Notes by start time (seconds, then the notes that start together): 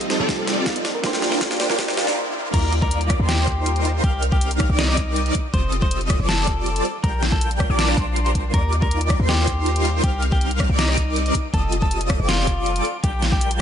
Already playing: F1 F3 G3 C4 D#4 F4 G4 A4 D#5, riser
0.01 D#5, closed hi-hat
0.08 F3 C4 D#4 G4 C5, snare, closed hi-hat
0.12 A4
0.20 F1 G3 C4 F4 A4 D5
0.29 G4, kick, snare, closed hi-hat
0.39 A4
0.47 C5, snare, closed hi-hat
0.57 D#5
0.66 F5, kick, snare, closed hi-hat
0.76 D#5, closed hi-hat
0.85 D5, snare, closed hi-hat
0.95 A#4
1.02 A#1 A#2 G3 A#3 D4 F4 G4 A#4 G5, kick, snare, closed hi-hat
1.06 C5
1.13 A#4, snare
1.22 D5, snare, closed hi-hat
1.32 F5, snare
1.41 kick, snare, closed hi-hat
1.51 F5, snare, closed hi-hat
1.58 A#2 A#3 D4 G4 C5 D5, snare, closed hi-hat
1.70 A#1 G3 D4 F4 A#4 D5, snare
1.79 G4, kick, snare, closed hi-hat
1.88 A#4, snare
1.97 F5, snare, closed hi-hat
2.07 G4, snare
2.54 D#2 G3 D#4 F4 A#4 D5 D6, kick, closed hi-hat, crash
2.73 closed hi-hat
2.82 A#4, kick
2.91 closed hi-hat
3.01 closed hi-hat
3.10 kick, cross-stick, closed hi-hat
3.20 D#2 G3 D#4 F4 A#4 C5 C6
3.29 G4, snare, closed hi-hat
3.48 kick, closed hi-hat
3.66 closed hi-hat
3.76 closed hi-hat
3.85 closed hi-hat
4.04 C2 G3 C4 D#4 G4 A#4 F5 F6, kick, closed hi-hat
4.23 closed hi-hat
4.32 G4, kick
4.41 closed hi-hat
4.51 closed hi-hat
4.60 kick, cross-stick, closed hi-hat
4.70 C2 G3 C4 D#4 A#4 D5 D6
4.79 D#4, snare, closed hi-hat
4.88 cross-stick
4.97 kick, closed hi-hat
5.16 closed hi-hat
5.26 closed hi-hat
5.35 kick, closed hi-hat
5.54 F1 G3 C4 F4 A4 C5 D#5 D#6, kick, closed hi-hat
5.72 closed hi-hat
5.82 C5, kick
5.91 closed hi-hat
6.01 closed hi-hat
6.10 kick, cross-stick, closed hi-hat
6.20 F1 G3 C4 F4 A4 D5 D6
6.29 A4, snare, closed hi-hat
6.47 kick, closed hi-hat
6.66 closed hi-hat
6.76 closed hi-hat
6.85 closed hi-hat
7.04 A#1 G3 D4 F4 A#4 G5 G6, kick, closed hi-hat
7.23 snare, closed hi-hat
7.32 A4, kick
7.41 closed hi-hat
7.51 closed hi-hat
7.60 kick, cross-stick, closed hi-hat
7.70 A#1 G3 D4 F4 A#4 D5 D6
7.79 D4, snare, closed hi-hat
7.88 cross-stick
7.97 A#1 G3 D4 F4 A#4 C5 C6, kick, closed hi-hat
8.16 closed hi-hat
8.26 closed hi-hat
8.35 kick, closed hi-hat
8.54 D#2 G3 D#4 F4 A#4 D5 D6, kick, closed hi-hat
8.73 closed hi-hat
8.82 A#4, kick
8.91 closed hi-hat
9.01 closed hi-hat
9.10 kick, cross-stick, closed hi-hat
9.20 D#2 G3 D#4 F4 A#4 C5 C6
9.29 G4, snare, closed hi-hat
9.47 kick, closed hi-hat
9.66 closed hi-hat
9.76 closed hi-hat
9.85 closed hi-hat
10.04 C2 G4 F6, kick, closed hi-hat
10.22 closed hi-hat
10.32 G4, kick
10.41 closed hi-hat
10.51 closed hi-hat
10.60 kick, cross-stick, closed hi-hat
10.70 C2 G3 C4 D#4 A#4 D5 D6
10.79 D#4, snare, closed hi-hat
10.89 cross-stick
10.97 kick, closed hi-hat
11.16 closed hi-hat
11.26 closed hi-hat
11.35 kick, closed hi-hat
11.54 F1 G3 C4 F4 A4 D#5 D#6, kick, closed hi-hat
11.72 closed hi-hat
11.82 A4, kick
11.91 closed hi-hat
12.01 closed hi-hat
12.10 kick, cross-stick, closed hi-hat
12.20 F1 G3 C4 F4 A4 D5 D6
12.29 F4, snare, closed hi-hat
12.47 kick, closed hi-hat
12.66 closed hi-hat
12.76 closed hi-hat
12.85 closed hi-hat
13.04 A#1 G3 D4 F4 G4 A#4 G5 G6, kick, closed hi-hat
13.22 snare, closed hi-hat
13.32 G4, kick
13.41 closed hi-hat
13.51 closed hi-hat